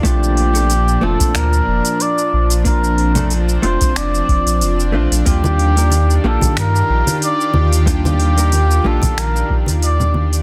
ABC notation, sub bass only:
X:1
M:4/4
L:1/16
Q:"Swing 16ths" 1/4=92
K:Eblyd
V:1 name="Sub bass" clef=bass
B,,,6 F,,, z D,,2 F,,, z3 B,,,2- | B,,,6 F,,, z F,,,2 F,,, B,,, F,,,2 B,,, B,,, | E,,6 B,,, z G,,2 B,,, z3 E,,2- | E,,6 B,,, z B,,,2 B,,, E,,4- E,, |]